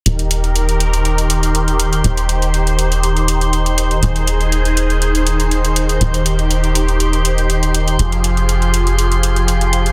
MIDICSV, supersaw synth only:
0, 0, Header, 1, 2, 480
1, 0, Start_track
1, 0, Tempo, 495868
1, 58, Time_signature, 4, 2, 24, 8
1, 9604, End_track
2, 0, Start_track
2, 0, Title_t, "Supersaw synth"
2, 0, Program_c, 0, 81
2, 58, Note_on_c, 0, 63, 69
2, 58, Note_on_c, 0, 67, 71
2, 58, Note_on_c, 0, 70, 84
2, 59, Note_on_c, 0, 51, 75
2, 1959, Note_off_c, 0, 70, 0
2, 1977, Note_on_c, 0, 72, 85
2, 3859, Note_off_c, 0, 67, 0
2, 3860, Note_off_c, 0, 51, 0
2, 3897, Note_on_c, 0, 51, 76
2, 3897, Note_on_c, 0, 68, 68
2, 5798, Note_off_c, 0, 68, 0
2, 5817, Note_on_c, 0, 67, 68
2, 7699, Note_off_c, 0, 51, 0
2, 7699, Note_off_c, 0, 63, 0
2, 7699, Note_off_c, 0, 72, 0
2, 7718, Note_off_c, 0, 67, 0
2, 7738, Note_on_c, 0, 65, 69
2, 7738, Note_on_c, 0, 67, 71
2, 7738, Note_on_c, 0, 68, 81
2, 9604, Note_off_c, 0, 65, 0
2, 9604, Note_off_c, 0, 67, 0
2, 9604, Note_off_c, 0, 68, 0
2, 9604, End_track
0, 0, End_of_file